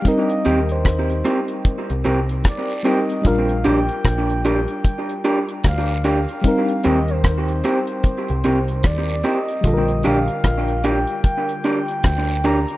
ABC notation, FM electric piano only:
X:1
M:4/4
L:1/8
Q:"Swing 16ths" 1/4=75
K:Bb
V:1 name="FM electric piano"
[G,CEB]6- [G,CEB] [G,CEB] | [G,DFB]8 | [G,CEB]8 | [D,G,FAB]8 |]